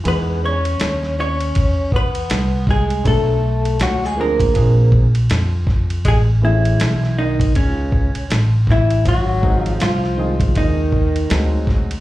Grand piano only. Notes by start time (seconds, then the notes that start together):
0.04 E3 G#3 B3 D#4 G#4
3.04 F#3 A3 B3 D4 A4
4.17 F3 A#3 C4 D4 G#4
4.54 F3 A#3 C4 D4 G#4
6.42 E3 A3 B3 C#4 G#4
9.41 F#3 G#3 C4 D#4 G#4
10.17 D#3 G#3 C4 D#4 G#4
11.29 F#3 G#3 C4 D#4 F#4